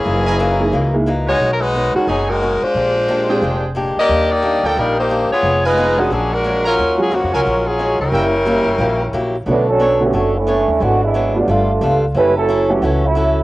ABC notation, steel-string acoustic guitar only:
X:1
M:4/4
L:1/8
Q:"Swing" 1/4=179
K:Ebm
V:1 name="Steel-string acoustic guitar"
[G,,_F,B,E] z [G,,F,B,E] z [G,,F,B,E] z [G,,F,B,E] z | [=B,,^D,^G,^C] z [B,,D,G,C] z [B,,D,G,C] z [B,,D,G,C] z | [B,,A,=D=G] z [B,,A,DG] z [B,,A,DG] z [B,,A,DG] z | [E,=G,B,=D] z [E,G,B,D] z [E,G,B,D] z [E,G,B,D] z |
[F,CEA] z [F,CEA] z [B,,^F,A,=D] z [B,,F,A,D] z | [E,A,DG] z [E,A,DG] z [E,A,DG] z [E,A,DG] z | [G,B,_F=G] z [_G,B,F=G] z [_G,B,F=G] z [_G,B,F=G] z | [K:Bm] [B,DAc] z [B,DAc] z [B,DAc] z [B,DAc] z |
[^G,,F,B,D] z [G,,F,B,D] z [=G,B,=FA] z [G,B,FA] z | [F,CEA] z [F,CEA] z [F,CEA] z [F,CEA] z |]